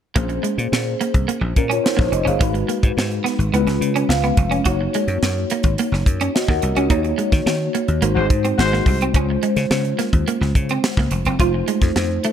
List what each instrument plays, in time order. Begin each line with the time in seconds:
0.15 slap bass A#1, tine electric piano A#3 C#4 G#4 C5, clean electric guitar A#3, kick, closed hi-hat
0.29 muted clean electric guitar stroke, closed hi-hat
0.43 clean electric guitar G#3, closed hi-hat
0.58 slap bass A#2, closed hi-hat
0.72 slap bass A#2, snare
1.01 clean electric guitar A#3, closed hi-hat
1.14 slap bass C2, kick, closed hi-hat
1.28 clean electric guitar A#3, closed hi-hat
1.41 slap bass A#1, muted clean electric guitar stroke
1.56 slap bass A#2, tine electric piano C#4 A#4, kick, closed hi-hat
1.70 clean electric guitar C#4, tine electric piano F4 C#5, closed hi-hat
1.84 tine electric piano D#4 C5, snare
1.97 slap bass A#1, clean electric guitar A#3, tine electric piano F4 C#5, kick, snare
2.12 slap bass F1, tine electric piano D#5, muted clean electric guitar stroke, closed hi-hat
2.25 slap bass F#1, clean electric guitar C#4, tine electric piano G#4 F5, closed hi-hat
2.39 slap bass G#1, tine electric piano G#3 D#4 F#4 B4, clean electric guitar G#3, kick, closed hi-hat
2.54 muted clean electric guitar stroke, closed hi-hat
2.68 clean electric guitar A#3, closed hi-hat
2.83 slap bass G#2, kick, closed hi-hat
2.97 slap bass G#2, snare
3.11 closed hi-hat
3.24 clean electric guitar B3, snare, closed hi-hat
3.39 slap bass G#1, closed hi-hat
3.52 slap bass C#2, tine electric piano G#3 C#4 E4 B4, clean electric guitar B3, closed hi-hat
3.60 tine electric piano F4
3.67 slap bass C#2, muted clean electric guitar stroke, snare, closed hi-hat
3.81 slap bass C#3, closed hi-hat
3.96 clean electric guitar C#4, closed hi-hat
4.09 slap bass C#2, tine electric piano F5, snare
4.24 clean electric guitar B3, closed hi-hat
4.37 slap bass F1, muted clean electric guitar stroke, kick, closed hi-hat
4.51 clean electric guitar C#4, closed hi-hat
4.65 slap bass F#1, tine electric piano A#3 D#4 F#4 C#5, clean electric guitar F#4, kick, closed hi-hat
4.81 muted clean electric guitar stroke
4.94 clean electric guitar G#3, closed hi-hat
5.08 slap bass F#2, closed hi-hat
5.22 slap bass F#2, snare
5.50 clean electric guitar A#3, closed hi-hat
5.63 slap bass G#1, kick, closed hi-hat
5.78 clean electric guitar A#3, closed hi-hat
5.92 slap bass F#1, muted clean electric guitar stroke, snare
6.06 slap bass F#2, kick, closed hi-hat
6.21 clean electric guitar C#4, closed hi-hat
6.35 tine electric piano F#4 D#5, snare
6.48 slap bass D#2, clean electric guitar A#3, tine electric piano A#4 F#5, kick, snare
6.62 slap bass C2, muted clean electric guitar stroke, closed hi-hat
6.76 slap bass C#2, clean electric guitar C#4, tine electric piano F#4 D#5, closed hi-hat
6.89 slap bass D#2, tine electric piano A#3 D#4 F#4 C#5, clean electric guitar D#4, kick, closed hi-hat
7.04 muted clean electric guitar stroke, closed hi-hat
7.18 clean electric guitar G#3, closed hi-hat
7.32 slap bass D#3, kick, snare, closed hi-hat
7.46 slap bass D#3, snare
7.75 clean electric guitar A#3, closed hi-hat
7.88 slap bass D#2, closed hi-hat
8.01 slap bass G#1, tine electric piano G#3 D#4 F#4 C5, clean electric guitar A#3, closed hi-hat
8.15 slap bass G#1, horn section G#3 F#4 C5, muted clean electric guitar stroke
8.30 slap bass G#2, kick, closed hi-hat
8.45 clean electric guitar C4, closed hi-hat
8.57 slap bass G#1, horn section G#3 F#4 C5, snare
8.73 clean electric guitar A#3, snare
8.86 slap bass C2, muted clean electric guitar stroke, kick, open hi-hat
9.01 clean electric guitar C4, closed hi-hat
9.13 slap bass C#2, tine electric piano G#3 C#4 F4 C5, clean electric guitar C#4, kick, closed hi-hat
9.30 muted clean electric guitar stroke
9.43 clean electric guitar G#3, closed hi-hat
9.56 slap bass C#3, snare, closed hi-hat
9.71 slap bass C#3, snare
9.85 closed hi-hat
9.99 clean electric guitar A#3, snare, closed hi-hat
10.13 slap bass D#2, kick, closed hi-hat
10.28 clean electric guitar A#3, closed hi-hat
10.41 slap bass C#2, muted clean electric guitar stroke, snare
10.55 slap bass C#3, kick, closed hi-hat
10.69 clean electric guitar C4, closed hi-hat
10.84 snare
10.97 slap bass C#2, clean electric guitar A#3, kick, snare
11.11 slap bass F1, muted clean electric guitar stroke, closed hi-hat
11.25 slap bass F#1, clean electric guitar C4, closed hi-hat
11.38 slap bass F1, tine electric piano G#3 D#4 F4 C5, clean electric guitar F4, kick, closed hi-hat
11.45 tine electric piano A3
11.54 muted clean electric guitar stroke
11.68 clean electric guitar G#3, closed hi-hat
11.81 slap bass F2, kick, snare, closed hi-hat
11.96 slap bass F2, snare
12.24 clean electric guitar A3, closed hi-hat